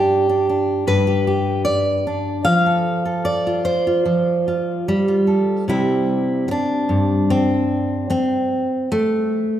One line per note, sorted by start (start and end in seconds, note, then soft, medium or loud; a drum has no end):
0.00 0.86 G2 medium
0.00 0.28 D4 soft
0.00 1.06 G4 medium
0.29 0.48 D4 soft
0.49 0.87 D4 soft
0.87 2.45 G2 medium
0.87 2.06 B4 medium
1.07 1.26 G4 soft
1.27 1.64 G4 soft
1.65 2.44 D5 medium
2.07 2.46 D4 soft
2.45 4.04 F3 medium
2.45 3.24 F5 loud
2.66 3.04 A4 soft
3.05 3.64 A4 soft
3.25 5.27 D5 medium
3.47 3.86 F4 soft
3.65 5.27 C5 medium
3.87 4.46 F4 soft
4.05 4.88 F3 medium
4.48 5.07 F4 soft
4.88 5.68 G3 medium
5.08 5.64 F4 soft
5.27 5.63 A4 soft
5.68 6.47 C3 medium
5.68 8.84 G3 soft
5.68 7.30 C4 soft
5.68 6.49 E4 medium
6.48 8.10 D4 medium
6.48 muted steel-string acoustic guitar stroke medium
6.89 8.09 G2 medium
7.30 8.09 C4 medium
8.10 8.89 C4 medium
8.10 muted steel-string acoustic guitar stroke medium
8.92 9.60 A3 medium